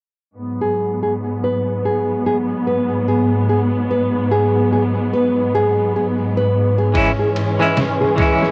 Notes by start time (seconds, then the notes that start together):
0.37 G#2 F#3 B3
0.61 G#4
1.03 G#4
1.44 B4
1.85 G#4
2.26 G#4
2.67 B4
3.08 G#4
3.49 G#4
3.91 B4
4.31 G#4
4.72 G#4
5.13 B4
5.55 G#4
5.96 G#4
6.37 B4
6.78 G#4
6.94 E3 G#3 C#4 E4, kick, ride
7.19 G#4
7.36 ride
7.59 E3 G#3 C#4 E4 B4
7.77 snare, ride
8.01 G#4, snare
8.16 E3 G#3 C#4, kick, ride
8.22 E4
8.42 G#4, snare